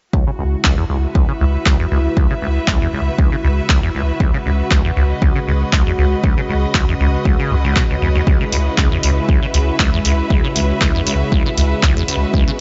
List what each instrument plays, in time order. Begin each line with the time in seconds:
0.13 acid bass C#2, analog synth pad C#3 G#3 E4, string section F#4, kick
0.27 acid bass C#3
0.39 sub bass C#2, acid bass C#2
0.64 acid bass C#2, kick, clap
0.78 acid bass E2
0.90 acid bass C#2, sub bass C#2
1.05 string section B4 E5
1.15 acid bass C#2, kick
1.29 acid bass C#3
1.41 sub bass C#2, acid bass C#2
1.66 acid bass C#2, kick, clap
1.80 acid bass E2
1.91 acid bass C#2, sub bass C#2
2.17 acid bass C#2, kick
2.30 acid bass C#3
2.42 sub bass C#2, acid bass C#2
2.68 acid bass C#2, kick, clap
2.81 acid bass E2
2.93 sub bass C#2, acid bass C#2
3.19 acid bass C#2, kick
3.32 acid bass C#3
3.44 sub bass C#2, acid bass C#2
3.69 acid bass C#2, kick, clap
3.83 acid bass E2
3.95 sub bass C#2, acid bass C#2
4.20 acid bass C#2, analog synth pad F#4, kick
4.34 acid bass C#3
4.46 sub bass C#2, acid bass C#2
4.71 acid bass C#2, kick, clap
4.85 acid bass E2
4.96 sub bass C#2, acid bass C#2
5.12 string section D#5
5.22 acid bass C#2, kick
5.36 acid bass C#3
5.47 sub bass C#2, acid bass C#2
5.73 acid bass C#2, kick, clap
5.86 acid bass E2
5.98 sub bass C#2, acid bass C#2
6.24 acid bass C#2, kick
6.37 acid bass C#3
6.49 sub bass C#2, acid bass C#2
6.75 acid bass C#2, kick, clap
6.88 acid bass E2
7.00 sub bass C#2, acid bass C#2
7.25 acid bass C#2, kick
7.39 acid bass C#3
7.51 sub bass C#2, acid bass C#2
7.65 acid bass C#2
7.76 acid bass B2, kick, clap
7.90 acid bass C#2
8.02 sub bass C#2, acid bass E2
8.15 acid bass D#2
8.27 acid bass C#2, analog synth pad E4, kick
8.41 acid bass C#3
8.52 sub bass C#2, acid bass C#2, open hi-hat
8.78 acid bass C#2, kick, clap
8.92 acid bass E2
9.03 sub bass C#2, acid bass C#2, open hi-hat
9.19 string section E5
9.29 acid bass C#2, kick
9.42 acid bass C#3
9.54 sub bass C#2, acid bass C#2, open hi-hat
9.80 acid bass C#2, kick, clap
9.93 acid bass E2
10.05 sub bass C#2, acid bass C#2, open hi-hat
10.30 acid bass C#2, kick
10.44 acid bass C#3
10.56 sub bass C#2, acid bass C#2, open hi-hat
10.81 acid bass C#2, kick, clap
10.95 acid bass E2
11.07 sub bass C#2, acid bass C#2, open hi-hat
11.32 acid bass C#2, kick
11.46 acid bass C#3
11.57 sub bass C#2, acid bass C#2, open hi-hat
11.83 acid bass C#2, kick, clap
11.96 acid bass E2
12.08 sub bass C#2, acid bass C#2, open hi-hat
12.34 acid bass C#2, analog synth pad B3, kick
12.47 acid bass C#3